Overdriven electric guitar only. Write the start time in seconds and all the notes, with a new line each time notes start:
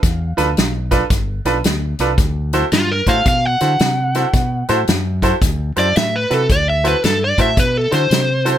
Already playing: F5
2.73 F4
2.92 A#4
3.09 F5
3.28 F5
3.46 F#5
5.79 D5
5.97 E5
6.16 B4
6.34 A4
6.52 D5
6.70 E5
6.88 B4
7.05 A4
7.24 D5
7.42 E5
7.59 B4
7.77 A4
7.94 C5